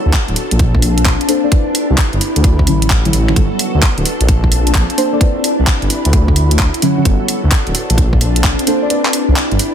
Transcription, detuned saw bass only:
0.05 0.11 D2 medium
0.28 0.34 D1 medium
0.52 1.15 A#1 loud
1.90 1.96 C2 medium
2.13 2.19 G1 medium
2.36 2.68 D2 loud
2.67 3.10 A1 medium
3.13 3.33 A1 medium
3.36 3.48 G1 loud
3.74 3.80 D2 medium
3.97 4.04 D1 loud
4.20 4.84 A#1 loud
5.59 5.65 C2 medium
5.82 5.88 G1 medium
6.05 6.69 D2 loud
7.05 7.17 G1 loud
7.44 7.50 D2 medium
7.67 7.73 D1 medium
7.90 8.53 A#1 loud
9.28 9.34 C2 medium
9.51 9.57 G1 medium

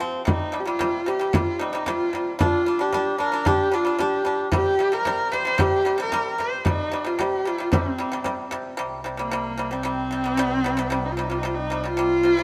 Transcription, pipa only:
0.00 0.21 F3 medium
0.00 0.22 C4 medium
0.25 0.47 C3 medium
0.25 0.48 G3 medium
0.52 0.63 C3 medium
0.52 0.64 G3 medium
0.65 0.77 C3 medium
0.65 0.78 G3 medium
0.79 1.01 C3 medium
0.79 1.02 G3 medium
1.06 1.17 C3 medium
1.06 1.18 G3 medium
1.19 1.30 C3 medium
1.19 1.31 G3 medium
1.33 1.54 C3 medium
1.33 1.55 G3 medium
1.59 1.70 C3 medium
1.59 1.71 G3 medium
1.73 1.84 C3 medium
1.73 1.85 G3 medium
1.86 2.08 C3 medium
1.86 2.08 G3 loud
2.13 2.34 C3 medium
2.13 2.35 G3 medium
2.39 2.61 G3 medium
2.39 2.62 D4 medium
2.66 2.77 G3 medium
2.66 2.78 D4 medium
2.79 2.90 G3 medium
2.79 2.91 D4 medium
2.92 3.14 G3 medium
2.92 3.15 D4 medium
3.18 3.30 G3 medium
3.18 3.31 D4 medium
3.32 3.43 G3 medium
3.32 3.44 D4 medium
3.45 3.67 G3 medium
3.45 3.68 D4 medium
3.72 3.83 G3 medium
3.72 3.84 D4 medium
3.85 3.96 G3 medium
3.85 3.97 D4 medium
3.99 4.20 G3 medium
3.99 4.21 D4 loud
4.25 4.47 G3 medium
4.25 4.48 D4 medium
4.52 4.73 C3 medium
4.52 4.74 G3 medium
4.79 4.90 C3 medium
4.79 4.91 G3 medium
4.92 5.03 C3 medium
4.92 5.04 G3 medium
5.05 5.27 C3 medium
5.05 5.28 G3 loud
5.32 5.43 C3 medium
5.32 5.44 G3 medium
5.45 5.56 C3 medium
5.45 5.57 G3 medium
5.58 5.80 C3 medium
5.58 5.81 G3 loud
5.85 5.96 C3 medium
5.85 5.97 G3 medium
5.98 6.09 C3 medium
5.98 6.10 G3 medium
6.12 6.33 C3 medium
6.12 6.34 G3 loud
6.38 6.60 C3 medium
6.38 6.61 G3 medium
6.65 6.87 C3 medium
6.65 6.87 G3 medium
6.92 7.03 C3 medium
6.92 7.03 G3 medium
7.04 7.16 C3 medium
7.04 7.17 G3 medium
7.19 7.40 C3 medium
7.19 7.41 G3 medium
7.45 7.56 C3 medium
7.45 7.57 G3 medium
7.58 7.69 C3 medium
7.58 7.70 G3 medium
7.72 7.93 C3 medium
7.72 7.94 G3 loud
7.98 8.09 C3 medium
7.98 8.10 G3 medium
8.12 8.22 C3 medium
8.12 8.23 G3 medium
8.24 8.46 C3 medium
8.24 8.47 G3 medium
8.51 8.73 C3 medium
8.51 8.73 G3 medium
8.77 8.99 C3 medium
8.77 9.00 G3 loud
9.04 9.15 C3 medium
9.04 9.16 G3 medium
9.17 9.29 C3 medium
9.17 9.29 G3 medium
9.31 9.53 C3 medium
9.31 9.54 G3 medium
9.58 9.69 C3 medium
9.58 9.69 G3 medium
9.71 9.82 C3 medium
9.71 9.83 G3 medium
9.83 10.05 C3 medium
9.83 10.06 G3 medium
10.11 10.22 C3 medium
10.11 10.23 G3 medium
10.24 10.35 C3 medium
10.24 10.36 G3 medium
10.37 10.59 C3 loud
10.37 10.60 G3 loud
10.64 10.75 C3 medium
10.64 10.76 G3 medium
10.77 10.88 C3 medium
10.77 10.89 G3 medium
10.90 11.12 C3 medium
10.90 11.13 G3 medium
11.17 11.28 C3 medium
11.17 11.29 G3 medium
11.30 11.41 C3 medium
11.30 11.42 G3 medium
11.43 11.65 C3 medium
11.43 11.66 G3 medium
11.70 11.81 C3 medium
11.70 11.82 G3 medium
11.84 11.95 C3 medium
11.84 11.96 G3 medium
11.97 12.19 C3 medium
11.97 12.20 G3 medium
12.23 12.35 C3 medium
12.23 12.35 G3 medium
12.37 12.43 C3 medium
12.37 12.43 G3 medium

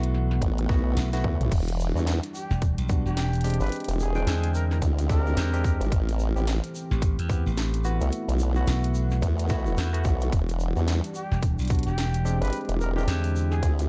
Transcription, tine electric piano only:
0.00 0.66 A3 loud
0.00 0.66 B3 medium
0.00 0.66 E4 medium
0.00 0.66 F#4 loud
0.69 1.09 A3 loud
0.69 1.09 B3 medium
0.69 1.09 E4 medium
0.69 1.09 F#4 loud
1.13 1.50 A3 loud
1.13 1.50 B3 medium
1.13 1.50 E4 medium
1.13 1.50 F#4 loud
1.96 2.05 G3 medium
1.96 2.05 B3 medium
1.96 2.05 D4 medium
1.96 2.05 F#4 medium
2.89 3.10 G3 medium
2.89 3.10 B3 medium
2.89 3.10 D4 medium
2.89 3.10 F#4 medium
3.44 4.12 G#3 loud
3.44 4.12 C4 medium
3.44 4.12 D4 medium
3.44 4.12 G4 loud
4.16 5.07 G#3 loud
4.16 5.07 C4 medium
4.16 5.07 D4 medium
4.16 5.07 G5 loud
5.09 5.49 G#3 loud
5.09 5.49 C4 medium
5.09 5.50 D4 medium
5.09 5.49 G4 loud
5.53 5.91 G#3 loud
5.53 5.91 C4 medium
5.53 5.91 D4 medium
5.53 5.91 G4 loud
6.36 6.45 B3 medium
6.36 6.45 C4 medium
6.36 6.45 E4 medium
6.36 6.45 G4 medium
7.29 7.50 B3 medium
7.29 7.50 C4 medium
7.29 7.50 E4 medium
7.29 7.50 G4 medium
7.85 8.52 A3 loud
7.85 8.52 B3 medium
7.85 8.52 E4 medium
7.85 8.52 F#4 loud
8.56 9.47 A3 loud
8.56 9.47 B3 medium
8.56 9.47 E4 medium
8.56 9.47 F#4 loud
9.49 9.90 A3 loud
9.49 9.90 B3 medium
9.49 9.90 E4 medium
9.49 9.90 F#4 loud
9.93 10.31 A3 loud
9.93 10.31 B3 medium
9.93 10.31 E4 medium
9.93 10.31 F#4 loud
10.76 10.86 G3 medium
10.76 10.86 B3 medium
10.76 10.86 D4 medium
10.76 10.86 F#4 medium
11.70 11.91 G3 medium
11.70 11.91 B3 medium
11.70 11.90 D4 medium
11.70 11.91 F#4 medium
12.25 12.93 G#3 loud
12.25 12.93 C4 medium
12.25 12.93 D4 medium
12.25 12.93 G4 loud
12.96 13.87 G#3 loud
12.96 13.87 C4 medium
12.96 13.87 D4 medium
12.96 13.87 G4 loud

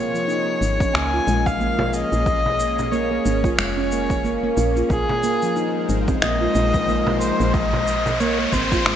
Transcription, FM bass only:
0.61 0.87 G#1 medium
0.94 1.20 C#2 medium
1.27 2.04 A#1 loud
2.12 3.19 A#1 medium
3.26 3.51 G#1 medium
3.58 4.52 F1 medium
4.57 4.83 A#1 loud
4.90 5.04 A#1 medium
5.89 6.15 G#1 medium
6.22 6.48 A#1 medium
6.55 7.32 A#1 loud
7.40 8.47 A#1 medium
8.53 8.78 G#1 medium
8.85 8.96 G#1 medium

